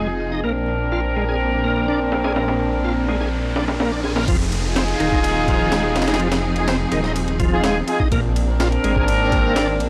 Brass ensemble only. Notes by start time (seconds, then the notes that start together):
Already playing: D#4 F4 G#4
0.44 C4 D4 A#4
4.64 D#4 F4 G#4
6.08 D#4 F4 G#4
6.56 D#4 F4 G#4
7.52 D#4 F4 G#4
7.64 D#4 F4 G#4
7.88 D#4 F4 G#4
8.48 C4 D4 A#4